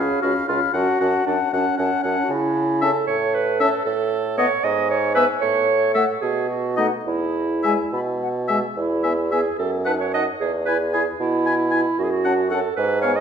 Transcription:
Already playing: french horn C#4, clarinet G#4, oboe F5, flute B5
0.21 bassoon C#2, french horn C#4, clarinet F#4, oboe F5, flute B5
0.48 bassoon C#2, french horn C#4, clarinet F4, oboe F5, flute B5
0.73 bassoon F#2, french horn C#4, clarinet F#4, oboe F#5, flute A5
1.00 bassoon F#2, french horn C#4, oboe F#5, flute A5
1.26 bassoon F#2, french horn C#4, clarinet D4, oboe F#5, flute A5
1.52 bassoon F#2, french horn C#4, clarinet C#4, oboe F#5, flute A5
1.78 bassoon F#2, french horn C#4, oboe F#5, flute A5
2.03 bassoon F#2, french horn C#4, oboe F#5, flute A5
2.24 clarinet F#4
2.30 bassoon C#3, clarinet E4
2.82 french horn C#4, clarinet A4, oboe E5, flute A5
3.07 bassoon A2, clarinet C#5
3.34 clarinet B4
3.60 french horn C#4, clarinet A4, oboe E5, flute A5
3.86 bassoon A2, clarinet A4
4.37 french horn B3, clarinet C#5, oboe D#5, flute F#5
4.64 bassoon G#2, clarinet D#5
4.90 clarinet C#5
5.14 french horn B3, clarinet B4, oboe E5, flute G#5
5.41 bassoon A2, clarinet C#5
5.94 french horn A3, clarinet A4, oboe E5, flute F#5
6.20 bassoon B2, clarinet G#4
6.49 clarinet F#4
6.77 french horn A3, clarinet D#4, oboe D#5, flute F#5
7.05 bassoon E2, clarinet E4
7.63 french horn G#3, oboe E5, flute G#5
7.93 bassoon B2, flute B5
8.21 flute F#5
8.48 french horn G#3, oboe E5, flute G#5
8.76 bassoon E2, clarinet E4
9.03 french horn B3, oboe E5, flute G#5
9.31 french horn B3, clarinet G#4, oboe E5, flute G#5
9.58 bassoon F#2, clarinet A4
9.85 french horn D#4, clarinet B4, oboe F#5, flute A5
10.00 clarinet C#5
10.13 french horn D#4, clarinet D#5, oboe F#5, flute A5
10.40 bassoon E2, clarinet G#4
10.65 french horn E4, clarinet B4, oboe G#5, flute B5
10.93 french horn E4, clarinet G#4, oboe G#5, flute B5
11.20 bassoon B2, clarinet E4
11.46 french horn E4, oboe G#5, flute B5
11.71 french horn E4, oboe G#5, flute B5
11.99 bassoon F#2, clarinet F#4
12.03 clarinet G#4
12.11 clarinet F#4
12.25 french horn C#4, oboe F#5, flute A5
12.49 french horn C#4, clarinet A4, oboe F#5, flute A5
12.76 bassoon G#2, clarinet B4
13.02 french horn B3, clarinet C#5, oboe F5, flute G#5
13.16 clarinet D#5

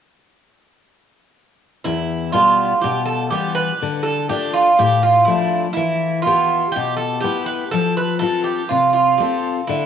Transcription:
1.84 steel-string acoustic guitar E2, bouzouki E4
2.32 steel-string acoustic guitar B2 G3 B3, bouzouki F4
2.82 steel-string acoustic guitar B2, bouzouki G4
3.06 bouzouki A4
3.30 steel-string acoustic guitar E3 G3 B3, bouzouki G4
3.55 bouzouki B4
3.82 steel-string acoustic guitar D3
4.03 bouzouki A4
4.29 steel-string acoustic guitar A3 D4 F4, bouzouki G4
4.53 bouzouki F4
4.79 steel-string acoustic guitar A2, bouzouki G4
5.03 bouzouki F4
5.25 steel-string acoustic guitar F3 A3 D4, bouzouki E4
5.73 steel-string acoustic guitar E3, bouzouki E4
6.22 bouzouki F4
6.26 steel-string acoustic guitar B3 G4 E5
6.72 bouzouki G4
6.76 steel-string acoustic guitar B2
6.97 bouzouki A4
7.20 steel-string acoustic guitar B3 G4, bouzouki G4
7.25 steel-string acoustic guitar E4
7.46 bouzouki B4
7.71 steel-string acoustic guitar F3, bouzouki A4
7.97 bouzouki B4
8.19 steel-string acoustic guitar C4 F4 A4, bouzouki A4
8.44 bouzouki G4
8.69 steel-string acoustic guitar C3, bouzouki F4
8.93 bouzouki F4
9.18 steel-string acoustic guitar C4 F4 A4, bouzouki G4
9.67 steel-string acoustic guitar D3, bouzouki E4

